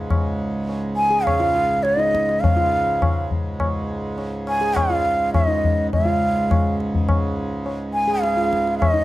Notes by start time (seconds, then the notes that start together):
Already playing: C#2 G#2
0.10 tabla na, tabla ge
0.69 tabla tin
0.96 G#5
1.10 G#4
1.24 F5, tabla na, tabla ge
1.40 F4
1.56 tabla te
1.83 C#5, tabla te
1.97 D#4 D#5, tabla te
2.15 tabla ke
2.29 tabla te
2.40 F5, tabla tin, tabla ge
2.57 F4
3.02 tabla na, tabla ge
3.31 tabla ge
3.60 tabla na, tabla ge
4.18 tabla tin
4.47 G#5, tabla na
4.61 G#4
4.76 F5, tabla na, tabla ge
4.90 F4
5.05 tabla te
5.34 D#5, tabla na, tabla ge
5.48 D#4
5.64 tabla ge
5.91 C#2 G#2 F5, tabla tin, tabla ge
6.05 F4
6.51 tabla na, tabla ge
6.80 tabla te
6.95 tabla ge
7.09 tabla na, tabla ge
7.66 tabla tin
7.93 G#5
8.08 G#4
8.22 F5, tabla te
8.37 F4, tabla te
8.53 tabla ke
8.67 tabla te
8.78 D#5, tabla na, tabla ge
8.94 D#4